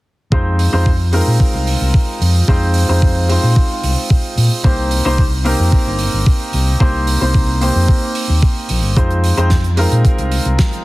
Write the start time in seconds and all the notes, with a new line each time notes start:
0.32 F2 G#3 C4 D#4 F4 C5, kick
0.59 open hi-hat
0.72 F2 G#3 C4 D#4 F4 C5
0.86 kick
1.12 G#3 C4 D#4 F4 A#4, open hi-hat
1.27 A#2
1.40 muted fingered electric bass stroke, kick
1.54 C2
1.67 open hi-hat
1.81 C2
1.94 kick
2.21 F2, open hi-hat
2.48 F2 G#3 C4 D#4 F4 C5, kick
2.74 open hi-hat
2.88 F2 G#3 C4 D#4 F4 C5
3.02 kick
3.28 G#3 C4 D#4 F4 C5, open hi-hat
3.43 A#2
3.56 kick
3.83 C2, open hi-hat
4.10 kick
4.37 A#2, open hi-hat
4.64 C2 A#3 C4 D#4 G4 C5, kick
4.91 open hi-hat
5.05 C2 A#3 C4 D#4 G4 C5
5.18 kick
5.44 A#3 C4 D#4 G4 A#4, open hi-hat
5.59 F2
5.72 muted fingered electric bass stroke, kick
5.87 G1
5.99 open hi-hat
6.13 G1
6.26 kick
6.53 C2, open hi-hat
6.80 C2 A#3 C4 D#4 G4 C5, kick
7.07 open hi-hat
7.21 C2 A#3 C4 D#4 G4 C5
7.34 kick
7.61 A#3 C4 D#4 G4 C5, open hi-hat
7.75 F2
7.88 kick
8.15 open hi-hat
8.29 D#2
8.42 kick
8.69 A#1, open hi-hat
8.84 G1
8.96 F2 G#3 C4 D#4 F4 C5, kick, closed hi-hat
9.11 closed hi-hat
9.24 open hi-hat
9.37 F2 G#3 C4 D#4 F4 C5, closed hi-hat
9.50 kick, snare, closed hi-hat
9.64 closed hi-hat
9.77 G#3 C4 D#4 F4 A#4, open hi-hat
9.92 A#2, closed hi-hat
10.05 muted fingered electric bass stroke, kick, closed hi-hat
10.18 C2, closed hi-hat
10.32 open hi-hat
10.45 C2, closed hi-hat
10.59 kick, snare, closed hi-hat
10.73 closed hi-hat